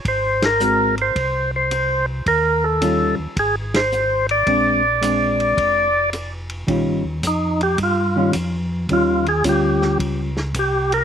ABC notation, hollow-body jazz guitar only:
X:1
M:4/4
L:1/8
Q:"Swing" 1/4=109
K:Ab
V:1 name="Hollow-body jazz guitar"
z2 [A,C_GB] z4 z | z2 [E,G,DF] z4 z | [A,C=D] z [A,CD]3 z3 | [E,G,DF] z4 [E,G,DF] z2 |
[E,G,DF] z [G,DF]3 z3 |]